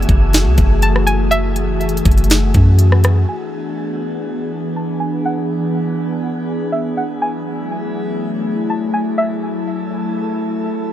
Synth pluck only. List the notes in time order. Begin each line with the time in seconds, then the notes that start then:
Already playing: G#5
0.83 A5
1.07 G#5
1.31 E5
3.29 G#5
4.76 A5
5.00 G#5
5.25 F#5
6.72 E5
6.97 F#5
7.22 G#5
8.70 A5
8.94 G#5
9.18 E5